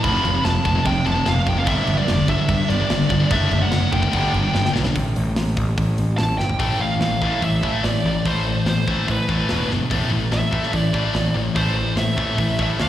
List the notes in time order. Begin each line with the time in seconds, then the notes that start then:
0.03 F1 F2 C3 F3 B5, kick, crash
0.24 F1 F2 C3, crash
0.34 F2 C3
0.44 F1 F2 C3 A5, snare, crash
0.65 F1 F2 C3, kick, crash
0.75 F2 C3
0.85 F1 F2 C3 G5, kick, crash
1.05 F1 F2 C3 A5, crash
1.16 F2 C3
1.26 F1 F2 C3 F5, snare, crash
1.46 F1 F2 C3 G5, kick, crash
1.57 F2 C3 F5
1.66 G1 G2 D3 G3 E5, kick, crash
1.87 G1 G2 D3, crash
1.97 G2 D3 D5
2.08 F1 G2 D3, snare, crash
2.28 G1 G2 D3 E5, kick, crash
2.38 G2 D3
2.48 G2 D3, kick, crash
2.69 G1 G2 D3 D5, crash
2.80 G2 D3
2.90 G1 G2 D3, snare, crash
3.09 G1 G2 D3, kick, crash
3.20 G2 D3
3.30 F#1 D3 A3 D4 E5, kick, crash
3.50 F#1 D3 A3, crash
3.62 D3 A3 F#5
3.71 F#1 D3 A3, snare, crash
3.92 F#1 D3 A3 G5, kick, crash
4.02 D3 A3, kick
4.11 G1 G2 D3 G3, kick, crash
4.33 G1 G2 D3, crash
4.43 G2 D3
4.53 G1 G2 D3, snare
4.65 snare
4.74 B1 G2 D3, snare
4.85 G2 D3, snare
4.96 A1, kick, open hi-hat
5.16 A1, open hi-hat
5.36 A1, snare, open hi-hat
5.57 A1, kick, open hi-hat
5.78 A1, kick, open hi-hat
5.98 A1, open hi-hat
6.18 A1 A5, snare, open hi-hat
6.38 G1 G5, snare
6.49 floor tom
6.59 A1 A2 E3 A3 G5, kick, open hi-hat
6.80 A1 A2 E3 F5
7.01 A1 A2 E3, snare, open hi-hat
7.22 A1 A2 E3 A3, kick
7.42 A1 A2 E3 E5, kick, open hi-hat
7.63 A2 E3 A3, kick
7.84 A1 A2 E3 D5, snare, open hi-hat
8.05 A1 A2 E3
8.25 A1 A2 E3 A3 C5, kick, open hi-hat
8.48 A2 E3
8.66 A1 A2 E3 C5, snare, open hi-hat
8.88 A1 A2 E3 A3, kick
9.08 A1 A2 E3 B4, kick, open hi-hat
9.29 A1 A2 E3 A3, kick
9.49 E1 E2 B2 E3, snare, open hi-hat
9.69 G1 E2 B2, snare
9.90 A1 A2 E3 A3, kick, open hi-hat
10.11 A1 A2 E3
10.31 A1 A2 E3 E5, snare, open hi-hat
10.51 A1 A2 E3 A3, kick
10.63 snare
10.72 A1 A2 E3 D5, kick, open hi-hat
10.93 A2 E3 A3, kick
11.15 A1 A2 E3, snare, open hi-hat
11.35 A1 A2 E3
11.55 A1 A2 E3 A3 C5, kick, open hi-hat
11.77 A2 E3
11.96 A1 A2 E3 E5, snare, open hi-hat
12.17 A1 A2 E3 A3, kick
12.38 A1 A2 E3, kick, open hi-hat
12.59 A1 A2 E3 A3 E5, kick
12.79 D2 D3 A3 D4 F5, snare, open hi-hat